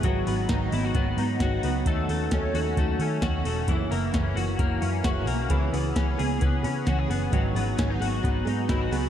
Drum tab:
HH |xoxoxoxo|xoxoxoxo|xoxoxoxo|xoxoxoxo|
SD |--o---o-|--o---o-|--o---o-|--o---o-|
BD |o-o-o-o-|o-o-o-o-|o-o-o-o-|o-o-o-o-|

HH |xoxoxoxo|
SD |--o---o-|
BD |o-o-o-o-|